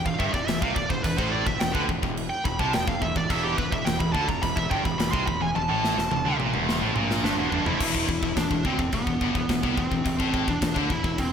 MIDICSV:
0, 0, Header, 1, 5, 480
1, 0, Start_track
1, 0, Tempo, 563380
1, 887, Time_signature, 4, 2, 24, 8
1, 9649, End_track
2, 0, Start_track
2, 0, Title_t, "Lead electric guitar"
2, 0, Program_c, 0, 29
2, 48, Note_on_c, 0, 77, 89
2, 161, Note_off_c, 0, 77, 0
2, 165, Note_on_c, 0, 76, 101
2, 281, Note_off_c, 0, 76, 0
2, 284, Note_on_c, 0, 74, 88
2, 400, Note_off_c, 0, 74, 0
2, 400, Note_on_c, 0, 76, 102
2, 520, Note_off_c, 0, 76, 0
2, 526, Note_on_c, 0, 77, 106
2, 638, Note_off_c, 0, 77, 0
2, 642, Note_on_c, 0, 74, 98
2, 761, Note_off_c, 0, 74, 0
2, 761, Note_on_c, 0, 72, 97
2, 878, Note_off_c, 0, 72, 0
2, 881, Note_on_c, 0, 71, 91
2, 1001, Note_off_c, 0, 71, 0
2, 1006, Note_on_c, 0, 72, 90
2, 1118, Note_on_c, 0, 74, 96
2, 1123, Note_off_c, 0, 72, 0
2, 1247, Note_off_c, 0, 74, 0
2, 1247, Note_on_c, 0, 76, 95
2, 1360, Note_on_c, 0, 79, 95
2, 1364, Note_off_c, 0, 76, 0
2, 1474, Note_on_c, 0, 71, 93
2, 1480, Note_off_c, 0, 79, 0
2, 1550, Note_off_c, 0, 71, 0
2, 1958, Note_on_c, 0, 79, 104
2, 2079, Note_off_c, 0, 79, 0
2, 2081, Note_on_c, 0, 83, 115
2, 2201, Note_off_c, 0, 83, 0
2, 2211, Note_on_c, 0, 81, 99
2, 2326, Note_off_c, 0, 81, 0
2, 2335, Note_on_c, 0, 79, 100
2, 2451, Note_off_c, 0, 79, 0
2, 2451, Note_on_c, 0, 77, 91
2, 2567, Note_off_c, 0, 77, 0
2, 2567, Note_on_c, 0, 76, 95
2, 2684, Note_off_c, 0, 76, 0
2, 2703, Note_on_c, 0, 74, 87
2, 2815, Note_off_c, 0, 74, 0
2, 2815, Note_on_c, 0, 76, 112
2, 2928, Note_off_c, 0, 76, 0
2, 2931, Note_on_c, 0, 67, 70
2, 3046, Note_off_c, 0, 67, 0
2, 3055, Note_on_c, 0, 71, 99
2, 3168, Note_off_c, 0, 71, 0
2, 3172, Note_on_c, 0, 76, 91
2, 3281, Note_on_c, 0, 79, 103
2, 3287, Note_off_c, 0, 76, 0
2, 3399, Note_on_c, 0, 83, 108
2, 3401, Note_off_c, 0, 79, 0
2, 3511, Note_off_c, 0, 83, 0
2, 3514, Note_on_c, 0, 81, 101
2, 3645, Note_off_c, 0, 81, 0
2, 3645, Note_on_c, 0, 82, 91
2, 3763, Note_off_c, 0, 82, 0
2, 3770, Note_on_c, 0, 83, 110
2, 3882, Note_on_c, 0, 76, 75
2, 3886, Note_off_c, 0, 83, 0
2, 4002, Note_off_c, 0, 76, 0
2, 4002, Note_on_c, 0, 79, 108
2, 4122, Note_off_c, 0, 79, 0
2, 4130, Note_on_c, 0, 83, 109
2, 4236, Note_off_c, 0, 83, 0
2, 4246, Note_on_c, 0, 83, 116
2, 4355, Note_off_c, 0, 83, 0
2, 4358, Note_on_c, 0, 84, 124
2, 4480, Note_off_c, 0, 84, 0
2, 4487, Note_on_c, 0, 83, 112
2, 4604, Note_off_c, 0, 83, 0
2, 4618, Note_on_c, 0, 80, 96
2, 4730, Note_off_c, 0, 80, 0
2, 4738, Note_on_c, 0, 81, 93
2, 5419, Note_off_c, 0, 81, 0
2, 6168, Note_on_c, 0, 62, 92
2, 6503, Note_off_c, 0, 62, 0
2, 6530, Note_on_c, 0, 64, 98
2, 7095, Note_off_c, 0, 64, 0
2, 7133, Note_on_c, 0, 62, 86
2, 7376, Note_off_c, 0, 62, 0
2, 7379, Note_on_c, 0, 60, 84
2, 7597, Note_off_c, 0, 60, 0
2, 7611, Note_on_c, 0, 59, 90
2, 8336, Note_off_c, 0, 59, 0
2, 8340, Note_on_c, 0, 60, 96
2, 8900, Note_off_c, 0, 60, 0
2, 8938, Note_on_c, 0, 62, 94
2, 9302, Note_on_c, 0, 64, 93
2, 9304, Note_off_c, 0, 62, 0
2, 9533, Note_on_c, 0, 60, 93
2, 9542, Note_off_c, 0, 64, 0
2, 9649, Note_off_c, 0, 60, 0
2, 9649, End_track
3, 0, Start_track
3, 0, Title_t, "Distorted electric guitar"
3, 0, Program_c, 1, 30
3, 49, Note_on_c, 1, 40, 74
3, 159, Note_off_c, 1, 40, 0
3, 162, Note_on_c, 1, 43, 104
3, 277, Note_off_c, 1, 43, 0
3, 293, Note_on_c, 1, 40, 85
3, 403, Note_off_c, 1, 40, 0
3, 413, Note_on_c, 1, 40, 70
3, 530, Note_off_c, 1, 40, 0
3, 530, Note_on_c, 1, 48, 100
3, 641, Note_off_c, 1, 48, 0
3, 657, Note_on_c, 1, 40, 73
3, 764, Note_off_c, 1, 40, 0
3, 774, Note_on_c, 1, 40, 71
3, 884, Note_off_c, 1, 40, 0
3, 894, Note_on_c, 1, 40, 65
3, 1009, Note_on_c, 1, 45, 102
3, 1011, Note_off_c, 1, 40, 0
3, 1241, Note_off_c, 1, 45, 0
3, 1255, Note_on_c, 1, 40, 75
3, 1366, Note_off_c, 1, 40, 0
3, 1376, Note_on_c, 1, 40, 77
3, 1492, Note_off_c, 1, 40, 0
3, 1495, Note_on_c, 1, 50, 103
3, 1604, Note_off_c, 1, 50, 0
3, 1609, Note_on_c, 1, 40, 75
3, 1717, Note_off_c, 1, 40, 0
3, 1728, Note_on_c, 1, 40, 82
3, 1920, Note_off_c, 1, 40, 0
3, 2088, Note_on_c, 1, 40, 76
3, 2208, Note_off_c, 1, 40, 0
3, 2216, Note_on_c, 1, 48, 107
3, 2325, Note_off_c, 1, 48, 0
3, 2338, Note_on_c, 1, 40, 69
3, 2441, Note_off_c, 1, 40, 0
3, 2451, Note_on_c, 1, 40, 82
3, 2566, Note_off_c, 1, 40, 0
3, 2576, Note_on_c, 1, 40, 78
3, 2679, Note_off_c, 1, 40, 0
3, 2689, Note_on_c, 1, 40, 77
3, 2803, Note_off_c, 1, 40, 0
3, 2813, Note_on_c, 1, 40, 100
3, 3039, Note_off_c, 1, 40, 0
3, 3049, Note_on_c, 1, 40, 87
3, 3158, Note_off_c, 1, 40, 0
3, 3169, Note_on_c, 1, 40, 73
3, 3273, Note_off_c, 1, 40, 0
3, 3283, Note_on_c, 1, 40, 74
3, 3394, Note_off_c, 1, 40, 0
3, 3405, Note_on_c, 1, 40, 75
3, 3527, Note_off_c, 1, 40, 0
3, 3529, Note_on_c, 1, 50, 97
3, 3642, Note_off_c, 1, 50, 0
3, 3649, Note_on_c, 1, 40, 77
3, 3758, Note_off_c, 1, 40, 0
3, 3768, Note_on_c, 1, 40, 74
3, 3885, Note_off_c, 1, 40, 0
3, 3895, Note_on_c, 1, 40, 79
3, 4006, Note_off_c, 1, 40, 0
3, 4010, Note_on_c, 1, 43, 108
3, 4122, Note_off_c, 1, 43, 0
3, 4131, Note_on_c, 1, 40, 81
3, 4241, Note_off_c, 1, 40, 0
3, 4251, Note_on_c, 1, 40, 70
3, 4370, Note_off_c, 1, 40, 0
3, 4371, Note_on_c, 1, 48, 106
3, 4483, Note_off_c, 1, 48, 0
3, 4492, Note_on_c, 1, 40, 75
3, 4595, Note_off_c, 1, 40, 0
3, 4605, Note_on_c, 1, 40, 77
3, 4723, Note_off_c, 1, 40, 0
3, 4733, Note_on_c, 1, 40, 73
3, 4851, Note_off_c, 1, 40, 0
3, 4853, Note_on_c, 1, 45, 112
3, 5083, Note_off_c, 1, 45, 0
3, 5102, Note_on_c, 1, 40, 78
3, 5210, Note_off_c, 1, 40, 0
3, 5221, Note_on_c, 1, 40, 79
3, 5335, Note_off_c, 1, 40, 0
3, 5341, Note_on_c, 1, 50, 106
3, 5447, Note_off_c, 1, 50, 0
3, 5456, Note_on_c, 1, 46, 105
3, 5565, Note_off_c, 1, 46, 0
3, 5576, Note_on_c, 1, 40, 107
3, 5805, Note_off_c, 1, 40, 0
3, 5815, Note_on_c, 1, 45, 115
3, 5925, Note_off_c, 1, 45, 0
3, 5938, Note_on_c, 1, 46, 106
3, 6166, Note_off_c, 1, 46, 0
3, 6175, Note_on_c, 1, 43, 97
3, 6284, Note_off_c, 1, 43, 0
3, 6295, Note_on_c, 1, 40, 109
3, 6404, Note_off_c, 1, 40, 0
3, 6410, Note_on_c, 1, 43, 112
3, 6522, Note_off_c, 1, 43, 0
3, 6535, Note_on_c, 1, 41, 107
3, 6644, Note_off_c, 1, 41, 0
3, 6649, Note_on_c, 1, 40, 113
3, 6881, Note_off_c, 1, 40, 0
3, 6891, Note_on_c, 1, 40, 78
3, 6999, Note_off_c, 1, 40, 0
3, 7009, Note_on_c, 1, 40, 77
3, 7121, Note_off_c, 1, 40, 0
3, 7132, Note_on_c, 1, 40, 77
3, 7241, Note_off_c, 1, 40, 0
3, 7251, Note_on_c, 1, 40, 76
3, 7370, Note_off_c, 1, 40, 0
3, 7371, Note_on_c, 1, 50, 104
3, 7482, Note_off_c, 1, 50, 0
3, 7490, Note_on_c, 1, 40, 75
3, 7602, Note_off_c, 1, 40, 0
3, 7612, Note_on_c, 1, 40, 73
3, 7716, Note_off_c, 1, 40, 0
3, 7727, Note_on_c, 1, 40, 77
3, 7847, Note_off_c, 1, 40, 0
3, 7851, Note_on_c, 1, 43, 106
3, 7962, Note_off_c, 1, 43, 0
3, 7967, Note_on_c, 1, 40, 79
3, 8078, Note_off_c, 1, 40, 0
3, 8089, Note_on_c, 1, 40, 73
3, 8207, Note_on_c, 1, 48, 113
3, 8208, Note_off_c, 1, 40, 0
3, 8320, Note_off_c, 1, 48, 0
3, 8325, Note_on_c, 1, 40, 78
3, 8431, Note_off_c, 1, 40, 0
3, 8442, Note_on_c, 1, 40, 69
3, 8548, Note_off_c, 1, 40, 0
3, 8558, Note_on_c, 1, 40, 76
3, 8681, Note_on_c, 1, 45, 108
3, 8683, Note_off_c, 1, 40, 0
3, 8917, Note_off_c, 1, 45, 0
3, 8923, Note_on_c, 1, 40, 80
3, 9032, Note_off_c, 1, 40, 0
3, 9043, Note_on_c, 1, 40, 74
3, 9157, Note_on_c, 1, 50, 98
3, 9165, Note_off_c, 1, 40, 0
3, 9275, Note_off_c, 1, 50, 0
3, 9283, Note_on_c, 1, 40, 72
3, 9390, Note_off_c, 1, 40, 0
3, 9400, Note_on_c, 1, 40, 80
3, 9596, Note_off_c, 1, 40, 0
3, 9649, End_track
4, 0, Start_track
4, 0, Title_t, "Fingered electric bass"
4, 0, Program_c, 2, 33
4, 49, Note_on_c, 2, 28, 81
4, 160, Note_off_c, 2, 28, 0
4, 168, Note_on_c, 2, 31, 94
4, 279, Note_off_c, 2, 31, 0
4, 287, Note_on_c, 2, 28, 75
4, 398, Note_off_c, 2, 28, 0
4, 414, Note_on_c, 2, 28, 90
4, 522, Note_off_c, 2, 28, 0
4, 527, Note_on_c, 2, 36, 92
4, 639, Note_off_c, 2, 36, 0
4, 648, Note_on_c, 2, 28, 75
4, 759, Note_off_c, 2, 28, 0
4, 767, Note_on_c, 2, 28, 79
4, 879, Note_off_c, 2, 28, 0
4, 890, Note_on_c, 2, 28, 82
4, 1001, Note_off_c, 2, 28, 0
4, 1009, Note_on_c, 2, 33, 89
4, 1231, Note_off_c, 2, 33, 0
4, 1249, Note_on_c, 2, 28, 88
4, 1360, Note_off_c, 2, 28, 0
4, 1364, Note_on_c, 2, 28, 78
4, 1477, Note_off_c, 2, 28, 0
4, 1489, Note_on_c, 2, 38, 94
4, 1600, Note_off_c, 2, 38, 0
4, 1609, Note_on_c, 2, 28, 82
4, 1720, Note_off_c, 2, 28, 0
4, 1728, Note_on_c, 2, 28, 84
4, 1952, Note_off_c, 2, 28, 0
4, 2088, Note_on_c, 2, 28, 79
4, 2200, Note_off_c, 2, 28, 0
4, 2209, Note_on_c, 2, 36, 96
4, 2320, Note_off_c, 2, 36, 0
4, 2333, Note_on_c, 2, 28, 84
4, 2443, Note_off_c, 2, 28, 0
4, 2451, Note_on_c, 2, 28, 85
4, 2562, Note_off_c, 2, 28, 0
4, 2572, Note_on_c, 2, 28, 86
4, 2682, Note_off_c, 2, 28, 0
4, 2691, Note_on_c, 2, 28, 85
4, 2801, Note_off_c, 2, 28, 0
4, 2811, Note_on_c, 2, 28, 101
4, 3033, Note_off_c, 2, 28, 0
4, 3054, Note_on_c, 2, 28, 77
4, 3163, Note_off_c, 2, 28, 0
4, 3172, Note_on_c, 2, 28, 88
4, 3282, Note_off_c, 2, 28, 0
4, 3300, Note_on_c, 2, 28, 79
4, 3406, Note_off_c, 2, 28, 0
4, 3411, Note_on_c, 2, 28, 90
4, 3522, Note_off_c, 2, 28, 0
4, 3531, Note_on_c, 2, 38, 98
4, 3642, Note_off_c, 2, 38, 0
4, 3653, Note_on_c, 2, 28, 78
4, 3763, Note_off_c, 2, 28, 0
4, 3775, Note_on_c, 2, 28, 78
4, 3884, Note_off_c, 2, 28, 0
4, 3892, Note_on_c, 2, 28, 86
4, 4002, Note_off_c, 2, 28, 0
4, 4014, Note_on_c, 2, 31, 99
4, 4123, Note_off_c, 2, 31, 0
4, 4135, Note_on_c, 2, 28, 86
4, 4244, Note_off_c, 2, 28, 0
4, 4259, Note_on_c, 2, 28, 97
4, 4366, Note_off_c, 2, 28, 0
4, 4374, Note_on_c, 2, 36, 95
4, 4483, Note_off_c, 2, 36, 0
4, 4495, Note_on_c, 2, 28, 78
4, 4604, Note_off_c, 2, 28, 0
4, 4626, Note_on_c, 2, 28, 87
4, 4730, Note_off_c, 2, 28, 0
4, 4740, Note_on_c, 2, 28, 88
4, 4846, Note_off_c, 2, 28, 0
4, 4860, Note_on_c, 2, 33, 93
4, 5078, Note_off_c, 2, 33, 0
4, 5098, Note_on_c, 2, 28, 87
4, 5205, Note_off_c, 2, 28, 0
4, 5216, Note_on_c, 2, 28, 85
4, 5324, Note_off_c, 2, 28, 0
4, 5335, Note_on_c, 2, 38, 100
4, 5443, Note_off_c, 2, 38, 0
4, 5448, Note_on_c, 2, 34, 92
4, 5560, Note_off_c, 2, 34, 0
4, 5577, Note_on_c, 2, 28, 91
4, 5796, Note_off_c, 2, 28, 0
4, 5809, Note_on_c, 2, 33, 99
4, 5920, Note_off_c, 2, 33, 0
4, 5931, Note_on_c, 2, 34, 96
4, 6153, Note_off_c, 2, 34, 0
4, 6164, Note_on_c, 2, 31, 108
4, 6275, Note_off_c, 2, 31, 0
4, 6280, Note_on_c, 2, 28, 86
4, 6396, Note_off_c, 2, 28, 0
4, 6406, Note_on_c, 2, 31, 90
4, 6518, Note_off_c, 2, 31, 0
4, 6525, Note_on_c, 2, 29, 102
4, 6638, Note_off_c, 2, 29, 0
4, 6650, Note_on_c, 2, 28, 103
4, 6872, Note_off_c, 2, 28, 0
4, 6888, Note_on_c, 2, 28, 81
4, 6999, Note_off_c, 2, 28, 0
4, 7008, Note_on_c, 2, 28, 87
4, 7119, Note_off_c, 2, 28, 0
4, 7128, Note_on_c, 2, 28, 85
4, 7240, Note_off_c, 2, 28, 0
4, 7250, Note_on_c, 2, 28, 88
4, 7361, Note_off_c, 2, 28, 0
4, 7367, Note_on_c, 2, 38, 92
4, 7479, Note_off_c, 2, 38, 0
4, 7489, Note_on_c, 2, 28, 84
4, 7600, Note_off_c, 2, 28, 0
4, 7608, Note_on_c, 2, 28, 76
4, 7720, Note_off_c, 2, 28, 0
4, 7727, Note_on_c, 2, 28, 77
4, 7839, Note_off_c, 2, 28, 0
4, 7847, Note_on_c, 2, 31, 96
4, 7959, Note_off_c, 2, 31, 0
4, 7965, Note_on_c, 2, 28, 88
4, 8078, Note_off_c, 2, 28, 0
4, 8088, Note_on_c, 2, 28, 89
4, 8200, Note_off_c, 2, 28, 0
4, 8208, Note_on_c, 2, 36, 85
4, 8320, Note_off_c, 2, 36, 0
4, 8330, Note_on_c, 2, 28, 81
4, 8440, Note_off_c, 2, 28, 0
4, 8448, Note_on_c, 2, 28, 85
4, 8559, Note_off_c, 2, 28, 0
4, 8568, Note_on_c, 2, 28, 86
4, 8679, Note_off_c, 2, 28, 0
4, 8691, Note_on_c, 2, 33, 99
4, 8913, Note_off_c, 2, 33, 0
4, 8929, Note_on_c, 2, 28, 80
4, 9040, Note_off_c, 2, 28, 0
4, 9049, Note_on_c, 2, 28, 82
4, 9160, Note_off_c, 2, 28, 0
4, 9169, Note_on_c, 2, 38, 97
4, 9280, Note_off_c, 2, 38, 0
4, 9286, Note_on_c, 2, 28, 80
4, 9399, Note_off_c, 2, 28, 0
4, 9406, Note_on_c, 2, 28, 76
4, 9631, Note_off_c, 2, 28, 0
4, 9649, End_track
5, 0, Start_track
5, 0, Title_t, "Drums"
5, 49, Note_on_c, 9, 36, 93
5, 134, Note_off_c, 9, 36, 0
5, 169, Note_on_c, 9, 36, 91
5, 254, Note_off_c, 9, 36, 0
5, 289, Note_on_c, 9, 36, 92
5, 374, Note_off_c, 9, 36, 0
5, 409, Note_on_c, 9, 49, 60
5, 417, Note_on_c, 9, 38, 102
5, 495, Note_off_c, 9, 49, 0
5, 502, Note_off_c, 9, 38, 0
5, 529, Note_on_c, 9, 36, 102
5, 615, Note_off_c, 9, 36, 0
5, 649, Note_on_c, 9, 36, 94
5, 734, Note_off_c, 9, 36, 0
5, 768, Note_on_c, 9, 36, 85
5, 853, Note_off_c, 9, 36, 0
5, 889, Note_on_c, 9, 36, 91
5, 892, Note_on_c, 9, 49, 59
5, 974, Note_off_c, 9, 36, 0
5, 977, Note_off_c, 9, 49, 0
5, 1010, Note_on_c, 9, 36, 89
5, 1095, Note_off_c, 9, 36, 0
5, 1249, Note_on_c, 9, 36, 93
5, 1334, Note_off_c, 9, 36, 0
5, 1366, Note_on_c, 9, 49, 63
5, 1373, Note_on_c, 9, 38, 125
5, 1451, Note_off_c, 9, 49, 0
5, 1459, Note_off_c, 9, 38, 0
5, 1489, Note_on_c, 9, 36, 106
5, 1574, Note_off_c, 9, 36, 0
5, 1610, Note_on_c, 9, 36, 85
5, 1695, Note_off_c, 9, 36, 0
5, 1730, Note_on_c, 9, 36, 87
5, 1815, Note_off_c, 9, 36, 0
5, 1852, Note_on_c, 9, 49, 64
5, 1937, Note_off_c, 9, 49, 0
5, 2090, Note_on_c, 9, 36, 100
5, 2175, Note_off_c, 9, 36, 0
5, 2210, Note_on_c, 9, 36, 94
5, 2295, Note_off_c, 9, 36, 0
5, 2328, Note_on_c, 9, 49, 66
5, 2335, Note_on_c, 9, 38, 113
5, 2413, Note_off_c, 9, 49, 0
5, 2421, Note_off_c, 9, 38, 0
5, 2450, Note_on_c, 9, 36, 95
5, 2535, Note_off_c, 9, 36, 0
5, 2571, Note_on_c, 9, 36, 88
5, 2656, Note_off_c, 9, 36, 0
5, 2691, Note_on_c, 9, 36, 88
5, 2777, Note_off_c, 9, 36, 0
5, 2813, Note_on_c, 9, 36, 101
5, 2817, Note_on_c, 9, 49, 64
5, 2898, Note_off_c, 9, 36, 0
5, 2902, Note_off_c, 9, 49, 0
5, 3053, Note_on_c, 9, 36, 91
5, 3138, Note_off_c, 9, 36, 0
5, 3173, Note_on_c, 9, 36, 91
5, 3258, Note_off_c, 9, 36, 0
5, 3292, Note_on_c, 9, 49, 67
5, 3300, Note_on_c, 9, 38, 122
5, 3378, Note_off_c, 9, 49, 0
5, 3385, Note_off_c, 9, 38, 0
5, 3411, Note_on_c, 9, 36, 96
5, 3496, Note_off_c, 9, 36, 0
5, 3532, Note_on_c, 9, 36, 86
5, 3617, Note_off_c, 9, 36, 0
5, 3652, Note_on_c, 9, 36, 87
5, 3737, Note_off_c, 9, 36, 0
5, 3773, Note_on_c, 9, 36, 93
5, 3776, Note_on_c, 9, 49, 65
5, 3858, Note_off_c, 9, 36, 0
5, 3861, Note_off_c, 9, 49, 0
5, 3893, Note_on_c, 9, 36, 94
5, 3978, Note_off_c, 9, 36, 0
5, 4014, Note_on_c, 9, 36, 90
5, 4099, Note_off_c, 9, 36, 0
5, 4134, Note_on_c, 9, 36, 93
5, 4220, Note_off_c, 9, 36, 0
5, 4256, Note_on_c, 9, 49, 54
5, 4263, Note_on_c, 9, 38, 122
5, 4341, Note_off_c, 9, 49, 0
5, 4349, Note_off_c, 9, 38, 0
5, 4375, Note_on_c, 9, 36, 113
5, 4460, Note_off_c, 9, 36, 0
5, 4495, Note_on_c, 9, 36, 91
5, 4580, Note_off_c, 9, 36, 0
5, 4737, Note_on_c, 9, 48, 68
5, 4822, Note_off_c, 9, 48, 0
5, 4980, Note_on_c, 9, 38, 75
5, 5065, Note_off_c, 9, 38, 0
5, 5099, Note_on_c, 9, 38, 61
5, 5184, Note_off_c, 9, 38, 0
5, 5210, Note_on_c, 9, 47, 83
5, 5295, Note_off_c, 9, 47, 0
5, 5450, Note_on_c, 9, 47, 76
5, 5535, Note_off_c, 9, 47, 0
5, 5569, Note_on_c, 9, 47, 73
5, 5654, Note_off_c, 9, 47, 0
5, 5700, Note_on_c, 9, 38, 88
5, 5785, Note_off_c, 9, 38, 0
5, 5927, Note_on_c, 9, 45, 102
5, 6013, Note_off_c, 9, 45, 0
5, 6056, Note_on_c, 9, 38, 86
5, 6141, Note_off_c, 9, 38, 0
5, 6177, Note_on_c, 9, 38, 99
5, 6262, Note_off_c, 9, 38, 0
5, 6410, Note_on_c, 9, 43, 110
5, 6495, Note_off_c, 9, 43, 0
5, 6529, Note_on_c, 9, 43, 98
5, 6614, Note_off_c, 9, 43, 0
5, 6649, Note_on_c, 9, 49, 65
5, 6649, Note_on_c, 9, 57, 125
5, 6650, Note_on_c, 9, 36, 100
5, 6734, Note_off_c, 9, 49, 0
5, 6734, Note_off_c, 9, 57, 0
5, 6735, Note_off_c, 9, 36, 0
5, 6770, Note_on_c, 9, 36, 84
5, 6855, Note_off_c, 9, 36, 0
5, 6889, Note_on_c, 9, 36, 87
5, 6974, Note_off_c, 9, 36, 0
5, 7009, Note_on_c, 9, 36, 85
5, 7094, Note_off_c, 9, 36, 0
5, 7128, Note_on_c, 9, 49, 62
5, 7130, Note_on_c, 9, 36, 103
5, 7135, Note_on_c, 9, 38, 127
5, 7213, Note_off_c, 9, 49, 0
5, 7215, Note_off_c, 9, 36, 0
5, 7221, Note_off_c, 9, 38, 0
5, 7249, Note_on_c, 9, 36, 87
5, 7334, Note_off_c, 9, 36, 0
5, 7368, Note_on_c, 9, 36, 89
5, 7454, Note_off_c, 9, 36, 0
5, 7488, Note_on_c, 9, 36, 89
5, 7573, Note_off_c, 9, 36, 0
5, 7603, Note_on_c, 9, 49, 57
5, 7608, Note_on_c, 9, 36, 96
5, 7688, Note_off_c, 9, 49, 0
5, 7693, Note_off_c, 9, 36, 0
5, 7728, Note_on_c, 9, 36, 97
5, 7813, Note_off_c, 9, 36, 0
5, 7848, Note_on_c, 9, 36, 89
5, 7933, Note_off_c, 9, 36, 0
5, 7967, Note_on_c, 9, 36, 99
5, 8053, Note_off_c, 9, 36, 0
5, 8085, Note_on_c, 9, 49, 63
5, 8088, Note_on_c, 9, 36, 85
5, 8093, Note_on_c, 9, 38, 108
5, 8171, Note_off_c, 9, 49, 0
5, 8173, Note_off_c, 9, 36, 0
5, 8178, Note_off_c, 9, 38, 0
5, 8208, Note_on_c, 9, 36, 90
5, 8293, Note_off_c, 9, 36, 0
5, 8328, Note_on_c, 9, 36, 91
5, 8414, Note_off_c, 9, 36, 0
5, 8448, Note_on_c, 9, 36, 84
5, 8533, Note_off_c, 9, 36, 0
5, 8568, Note_on_c, 9, 36, 94
5, 8568, Note_on_c, 9, 49, 64
5, 8653, Note_off_c, 9, 36, 0
5, 8653, Note_off_c, 9, 49, 0
5, 8689, Note_on_c, 9, 36, 98
5, 8774, Note_off_c, 9, 36, 0
5, 8808, Note_on_c, 9, 36, 87
5, 8893, Note_off_c, 9, 36, 0
5, 8928, Note_on_c, 9, 36, 93
5, 9013, Note_off_c, 9, 36, 0
5, 9046, Note_on_c, 9, 49, 68
5, 9048, Note_on_c, 9, 36, 101
5, 9054, Note_on_c, 9, 38, 121
5, 9131, Note_off_c, 9, 49, 0
5, 9133, Note_off_c, 9, 36, 0
5, 9139, Note_off_c, 9, 38, 0
5, 9168, Note_on_c, 9, 36, 83
5, 9253, Note_off_c, 9, 36, 0
5, 9288, Note_on_c, 9, 36, 89
5, 9373, Note_off_c, 9, 36, 0
5, 9408, Note_on_c, 9, 36, 86
5, 9493, Note_off_c, 9, 36, 0
5, 9526, Note_on_c, 9, 49, 63
5, 9529, Note_on_c, 9, 36, 86
5, 9612, Note_off_c, 9, 49, 0
5, 9614, Note_off_c, 9, 36, 0
5, 9649, End_track
0, 0, End_of_file